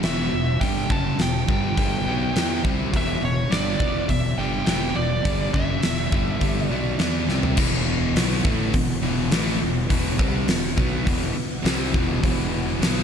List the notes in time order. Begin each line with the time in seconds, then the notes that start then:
0.03 E1 E2 B2 E3 E5, snare, open hi-hat
0.33 E1 E2 B2
0.61 G1 G2 D3 G3 G5, kick, open hi-hat
0.90 F#1 F#2 C#3 F#3 A5, kick
1.19 E1 E2 B2 G5, snare, open hi-hat
1.49 G1 G2 D3 G3, kick
1.77 G1 G2 D3 G3, kick, open hi-hat
2.06 B1 B2 F#3 B3
2.35 E2 E3 B3 E4, snare, open hi-hat
2.65 C2 C3 G3 C4, kick
2.93 E1 E2 B2 E3 E5, kick, open hi-hat
3.22 E1 E2 B2 C#5
3.50 G1 G2 D3 G3 D5, snare, open hi-hat
3.80 E1 E2 B2 E3, kick
4.09 E1 E2 B2 E5, kick, open hi-hat
4.38 G1 G2 D3 G3 G5
4.66 E1 E2 B2 E3 G5, snare, open hi-hat
4.96 E1 E2 B2 D5
5.25 G1 G2 D3 G3, kick, open hi-hat
5.53 F#1 F#2 C#3 F#3 E5, kick
5.83 E1 E2 B2, snare, open hi-hat
6.12 G1 G2 D3 G3, kick
6.41 G1 G2 D3 G3, kick, open hi-hat
6.66 B2 D5
6.71 B1 F#3 B3
6.99 E2 E3 B3 E4, snare, open hi-hat
7.29 C2 C3 G3 C4, snare
7.43 floor tom
7.57 E1 E2 B2 E3 E4 B4, kick, crash
7.61 F#5
8.15 B1 B2 F#3 B3, snare, open hi-hat
8.44 A1 A2 E3 A3, kick
8.73 E1 E2 B2, kick, open hi-hat
9.02 E1 E2 B2 E3
9.31 A1 A2 E3 A3, snare, open hi-hat
9.62 E1 E2 B2
9.89 E1 E2 B2 E3, kick, open hi-hat
10.18 C2 C3 G3 C4, kick
10.47 E1 E2 B2, snare, open hi-hat
10.76 B1 B2 F#3 B3, kick
11.05 E1 E2 B2 E3, kick, open hi-hat
11.33 muted distorted electric guitar stroke, muted overdriven electric guitar stroke, muted fingered electric bass stroke
11.64 C2 C3 G3 C4, snare, open hi-hat
11.94 E1 E2 B2 E3, kick
12.23 E1 E2 B2 E3, kick, open hi-hat
12.81 B1 B2 F#3 B3, snare, open hi-hat